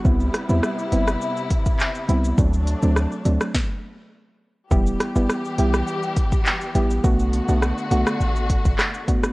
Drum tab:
HH |--x---x---x---x-|--x---x---------|--x---x---x---x-|--x---x---x---x-|
SH |xxxxxxxxxxxxxxxx|xxxxxxxx--------|xxxxxxxxxxxxxxxx|xxxxxxxxxxxxxxxx|
CP |------------x---|----------------|------------x---|------------x---|
SD |--r-r--r--------|----r--ro-------|--r-r--r--------|----r--r----r--r|
BD |o---------oo----|o-------o-------|o---------oo----|o---------oo--o-|